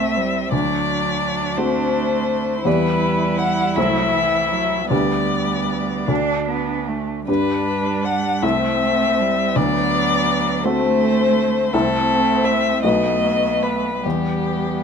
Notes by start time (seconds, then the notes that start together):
Already playing: C2 A3 C4 E4 A4 E5
0.17 G3
0.52 D2 F#3 D4 D5
1.57 A3 C4 F#4 A4 C5
2.65 E2 G3 B3 E4 G4 B4 D5
3.39 F#5
3.76 C2 F#3 A3 E4 C5 E5
4.14 E3
4.51 F#3
4.89 D2 G3 B3 D4 G4 B4 D5
6.08 D2 D4 F#4 A4
6.49 B3
6.88 A3
7.28 G2 G3 D4 G4 B4
8.05 F#5
8.42 C2 A3 C4 E4 A4 E5
8.82 A3
9.20 G3
9.56 D2 F#3 B3 D5
10.64 A3 C4 F#4 A4 C5
11.72 C2 A3 C4 E4 A4
12.45 E5
12.83 B1 A3 B3 F#4 B4 D#5
13.63 B4
14.03 E2 G3 B3 G4